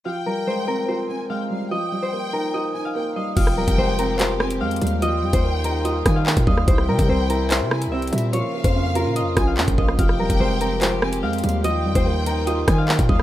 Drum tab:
CC |--------------------------------|--------------------------------|x-------------------------------|--------------------------------|
HH |--------------------------------|--------------------------------|x-----x-----x---x-----x---xxxx--|x-----x-----x---x---x-----x-----|
CP |--------------------------------|--------------------------------|----------------x---------------|------------------------x-------|
SD |--------------------------------|--------------------------------|--r-----------------r-----------|--------------------r---------r-|
BD |--------------------------------|--------------------------------|o-----o-------------------------|------o-------------o-----o-o---|

CC |--------------------------------|--------------------------------|--------------------------------|--------------------------------|
HH |x-----x-----x---x-----x---xxxx--|x-----x-----x---x---x-----x-----|x-----x-----x---x-----x---xxxx--|x-----x-----x---x---x-----x-----|
CP |----------------x---------------|------------------------x-------|----------------x---------------|------------------------x-------|
SD |--r-----------------r-----------|--------------------r---------r-|--r-----------------r-----------|--------------------r---------r-|
BD |o-----o-------------------------|------o-------------o-----o-o---|o-----o-------------------------|------o-------------o-----o-o---|